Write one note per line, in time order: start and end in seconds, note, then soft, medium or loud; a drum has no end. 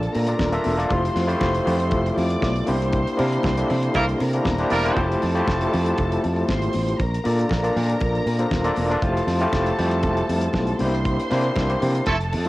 0.00 0.27 A#3 loud
0.00 0.27 D4 medium
0.00 0.27 F4 medium
0.00 0.12 A4 medium
0.00 0.28 A4 medium
0.00 0.28 D5 loud
0.00 0.12 A5 loud
0.00 closed hi-hat soft
0.14 0.33 A#2 loud
0.14 0.89 A#4 medium
0.14 0.89 A#5 medium
0.14 open hi-hat medium
0.14 muted conga medium
0.27 0.45 A#3 medium
0.27 0.46 D4 medium
0.27 0.46 F4 medium
0.27 0.46 A4 medium
0.27 0.46 D5 medium
0.27 closed hi-hat medium
0.39 0.57 D#1 medium
0.39 kick loud
0.39 snare loud
0.39 high conga medium
0.52 0.71 A#3 loud
0.52 0.71 D4 medium
0.52 0.71 F4 medium
0.52 0.71 A4 loud
0.52 0.71 E5 loud
0.52 closed hi-hat soft
0.64 0.84 E1 loud
0.64 open hi-hat medium
0.64 high conga medium
0.77 0.86 A#3 loud
0.77 0.87 D4 medium
0.77 0.87 F4 medium
0.77 0.87 A4 medium
0.77 0.87 D5 loud
0.77 closed hi-hat soft
0.89 1.09 F1 loud
0.89 1.18 A3 medium
0.89 1.18 E4 medium
0.89 1.18 F4 medium
0.89 1.18 G4 medium
0.89 2.15 C5 medium
0.89 1.19 C5 loud
0.89 2.15 C6 medium
0.89 kick loud
0.89 closed hi-hat medium
0.89 muted conga soft
1.05 closed hi-hat soft
1.16 1.34 F2 loud
1.16 snare soft
1.16 open hi-hat medium
1.16 muted conga medium
1.27 1.56 A3 loud
1.27 1.56 E4 loud
1.27 1.56 F4 loud
1.27 1.56 G4 medium
1.27 1.57 C5 loud
1.27 closed hi-hat soft
1.41 1.59 F1 loud
1.41 kick loud
1.41 snare loud
1.41 high conga medium
1.55 closed hi-hat soft
1.66 1.94 F2 loud
1.66 2.41 A3 medium
1.66 2.41 E4 medium
1.66 2.41 F4 medium
1.66 2.41 G4 medium
1.66 2.42 C5 loud
1.66 open hi-hat medium
1.66 low conga medium
1.80 closed hi-hat soft
1.91 2.10 F1 loud
1.91 kick loud
1.91 closed hi-hat medium
1.91 muted conga soft
2.06 closed hi-hat soft
2.17 2.35 F2 loud
2.17 2.67 D5 medium
2.17 2.67 D6 medium
2.17 open hi-hat medium
2.17 muted conga medium
2.30 closed hi-hat medium
2.42 2.61 B1 medium
2.42 kick loud
2.42 snare loud
2.42 high conga medium
2.56 closed hi-hat medium
2.66 3.05 C2 loud
2.66 3.08 A#3 medium
2.66 3.09 D4 medium
2.66 3.09 E4 medium
2.66 3.09 G4 medium
2.66 4.17 C5 loud
2.66 3.09 C5 medium
2.66 4.17 C6 loud
2.66 open hi-hat medium
2.66 high conga medium
2.82 closed hi-hat medium
2.93 kick loud
2.93 closed hi-hat medium
3.07 closed hi-hat soft
3.17 3.37 C3 loud
3.17 3.46 A#3 medium
3.17 3.46 D4 medium
3.17 3.46 E4 medium
3.17 3.47 G4 medium
3.17 3.47 A#4 loud
3.17 open hi-hat medium
3.17 muted conga medium
3.32 closed hi-hat soft
3.43 3.62 C2 loud
3.43 kick loud
3.43 snare loud
3.43 high conga medium
3.57 4.13 A#3 medium
3.57 4.13 D4 medium
3.57 4.13 E4 medium
3.57 4.14 G4 medium
3.57 4.14 A4 medium
3.57 closed hi-hat medium
3.70 3.88 C3 loud
3.70 open hi-hat medium
3.70 low conga medium
3.83 closed hi-hat medium
3.94 4.13 C2 loud
3.94 4.04 G3 loud
3.94 4.03 A#3 loud
3.94 4.04 E4 loud
3.94 4.03 A#4 loud
3.94 kick loud
3.94 closed hi-hat medium
3.94 muted conga medium
4.09 closed hi-hat soft
4.20 4.39 C3 loud
4.20 4.95 A#4 medium
4.20 4.95 A#5 medium
4.20 open hi-hat medium
4.20 muted conga medium
4.33 4.52 A#3 medium
4.33 4.52 D4 medium
4.33 4.52 E4 medium
4.33 4.52 G4 medium
4.33 4.52 C5 medium
4.33 closed hi-hat medium
4.45 4.64 D#1 medium
4.45 kick loud
4.45 snare loud
4.45 high conga medium
4.58 4.77 A#3 medium
4.58 4.77 D4 loud
4.58 4.77 E4 medium
4.58 4.78 G4 medium
4.58 4.78 C5 loud
4.58 closed hi-hat soft
4.70 4.90 E1 medium
4.70 5.04 G3 loud
4.70 5.04 A#3 loud
4.70 5.04 E4 loud
4.70 5.04 A#4 loud
4.70 open hi-hat medium
4.70 high conga medium
4.84 4.93 A#3 medium
4.84 4.93 D4 medium
4.84 4.93 E4 medium
4.84 4.94 G4 medium
4.84 4.94 C5 loud
4.84 closed hi-hat soft
4.84 high conga medium
4.96 5.15 F1 loud
4.96 5.24 A3 medium
4.96 5.24 E4 medium
4.96 5.25 F4 medium
4.96 5.25 G4 medium
4.96 6.46 A4 medium
4.96 5.25 C5 loud
4.96 6.46 A5 loud
4.96 kick loud
4.96 closed hi-hat medium
4.96 muted conga soft
5.12 closed hi-hat soft
5.22 5.41 F2 loud
5.22 open hi-hat medium
5.22 muted conga medium
5.34 5.63 A3 loud
5.34 5.63 E4 medium
5.34 5.63 F4 loud
5.34 5.63 G4 loud
5.34 5.63 C5 loud
5.34 closed hi-hat soft
5.48 5.65 F1 loud
5.48 kick loud
5.48 snare loud
5.48 high conga medium
5.61 closed hi-hat medium
5.72 5.92 F2 loud
5.72 6.47 A3 medium
5.72 6.47 E4 medium
5.72 6.47 F4 medium
5.72 6.47 G4 medium
5.72 6.48 C5 medium
5.72 open hi-hat medium
5.72 low conga medium
5.86 closed hi-hat medium
5.97 6.16 F1 loud
5.97 kick loud
5.97 closed hi-hat medium
5.97 muted conga medium
6.12 closed hi-hat soft
6.24 6.42 F2 medium
6.24 open hi-hat medium
6.24 muted conga medium
6.36 closed hi-hat soft
6.48 6.67 G#1 medium
6.48 6.99 C5 medium
6.48 6.99 C6 medium
6.48 kick loud
6.48 snare loud
6.48 high conga loud
6.62 closed hi-hat soft
6.73 6.93 A1 loud
6.73 open hi-hat medium
6.73 high conga medium
6.88 closed hi-hat soft
7.00 7.18 A#1 loud
7.00 8.99 A#4 medium
7.00 8.99 A#5 loud
7.00 kick loud
7.00 closed hi-hat medium
7.00 muted conga soft
7.14 closed hi-hat medium
7.24 7.44 A#2 loud
7.24 7.52 A#3 medium
7.24 7.53 D4 medium
7.24 7.53 F4 medium
7.24 7.53 A4 medium
7.24 7.53 D5 loud
7.24 open hi-hat medium
7.24 muted conga medium
7.39 closed hi-hat soft
7.49 7.69 A#1 loud
7.49 kick loud
7.49 snare loud
7.49 high conga medium
7.63 8.19 A#3 medium
7.63 8.19 D4 medium
7.63 8.19 F4 medium
7.63 8.20 A#4 medium
7.63 8.20 D5 medium
7.63 closed hi-hat medium
7.76 7.94 A#2 loud
7.76 open hi-hat medium
7.76 low conga medium
7.89 closed hi-hat medium
8.00 8.19 A#1 loud
8.00 kick loud
8.00 closed hi-hat medium
8.00 muted conga medium
8.15 closed hi-hat soft
8.26 8.44 A#2 loud
8.26 open hi-hat medium
8.26 muted conga medium
8.39 8.57 A#3 medium
8.39 8.58 D4 medium
8.39 8.58 F4 medium
8.39 8.58 A4 medium
8.39 8.58 C5 medium
8.39 closed hi-hat medium
8.51 8.70 D#1 medium
8.51 kick loud
8.51 snare loud
8.51 high conga medium
8.64 8.83 A#3 loud
8.64 8.83 D4 medium
8.64 8.83 F4 medium
8.64 8.83 A4 loud
8.64 8.84 D5 loud
8.64 closed hi-hat medium
8.76 8.95 E1 loud
8.76 open hi-hat medium
8.76 high conga medium
8.90 8.99 A#3 loud
8.90 8.99 D4 medium
8.90 9.00 F4 loud
8.90 9.00 A4 medium
8.90 9.00 D5 loud
8.90 closed hi-hat soft
9.02 9.20 F1 loud
9.02 9.30 A3 medium
9.02 9.30 E4 medium
9.02 9.30 F4 medium
9.02 9.31 G4 medium
9.02 10.77 A4 loud
9.02 9.31 C5 loud
9.02 10.76 A5 loud
9.02 kick loud
9.02 closed hi-hat medium
9.17 closed hi-hat medium
9.27 9.45 F2 loud
9.27 snare soft
9.27 open hi-hat medium
9.27 muted conga medium
9.41 9.69 A3 loud
9.41 9.69 E4 loud
9.41 9.69 F4 loud
9.41 9.69 G4 loud
9.41 9.69 C5 loud
9.41 closed hi-hat soft
9.53 9.71 F1 loud
9.53 kick loud
9.53 snare loud
9.53 high conga medium
9.66 closed hi-hat medium
9.78 10.05 F2 loud
9.78 9.84 G3 medium
9.78 10.53 E4 medium
9.78 10.53 F4 medium
9.78 10.53 G4 medium
9.78 10.53 C5 loud
9.78 open hi-hat medium
9.78 low conga medium
9.84 10.56 A3 medium
9.92 closed hi-hat medium
10.03 10.22 F1 loud
10.03 kick loud
10.03 closed hi-hat medium
10.03 muted conga medium
10.17 closed hi-hat soft
10.29 10.47 F2 medium
10.29 open hi-hat medium
10.29 muted conga medium
10.41 closed hi-hat medium
10.53 10.72 B1 medium
10.53 kick loud
10.53 snare loud
10.53 high conga medium
10.67 closed hi-hat soft
10.79 11.16 C2 loud
10.79 11.20 A#3 medium
10.79 11.21 D4 medium
10.79 11.21 E4 medium
10.79 11.21 G4 medium
10.79 11.21 C5 loud
10.79 12.05 C5 medium
10.79 12.04 C6 loud
10.79 open hi-hat medium
10.79 high conga medium
10.95 closed hi-hat soft
11.05 kick loud
11.05 closed hi-hat medium
11.20 closed hi-hat medium
11.30 11.49 C3 loud
11.30 11.58 A#3 medium
11.30 11.58 D4 medium
11.30 11.59 E4 medium
11.30 11.59 G4 medium
11.30 11.59 C5 loud
11.30 snare soft
11.30 open hi-hat medium
11.30 muted conga medium
11.44 closed hi-hat soft
11.55 11.74 C2 loud
11.55 kick loud
11.55 snare loud
11.55 high conga medium
11.69 12.06 A#3 medium
11.69 12.06 D4 medium
11.69 12.07 E4 medium
11.69 12.07 G4 medium
11.69 12.07 C5 medium
11.69 closed hi-hat soft
11.82 12.00 C3 loud
11.82 open hi-hat medium
11.82 low conga medium
11.95 closed hi-hat soft
12.06 12.34 F1 loud
12.06 12.15 F3 loud
12.06 12.15 A3 loud
12.06 12.15 E4 loud
12.06 12.15 A4 loud
12.06 12.49 A4 medium
12.06 12.49 A5 loud
12.06 kick loud
12.06 closed hi-hat medium
12.06 muted conga soft
12.20 closed hi-hat soft
12.33 12.49 F2 loud
12.33 open hi-hat medium
12.33 muted conga medium
12.45 12.49 A3 medium
12.45 12.49 C4 medium
12.45 12.49 E4 medium
12.45 closed hi-hat medium